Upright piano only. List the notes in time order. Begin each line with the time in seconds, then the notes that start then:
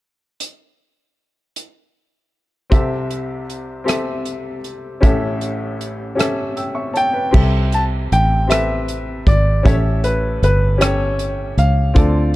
2.70 C2 C3 C4 G4 A4 E5
3.84 C4 G4 A4 E5
5.01 A1 A2 C#4 G4 A4 E5
6.15 C#4 G4 A4 E5
6.57 G5 E6
6.75 E5 C#6
6.94 C#5 A5
7.13 B4 G5
7.31 C3 C4 G4 A4 E5
8.47 C4 G4 A4 B4
9.63 A2 C#4 G4 A4 E5
10.78 C#4 G4 A4 G5
11.94 D3 C4 F4 A4 D5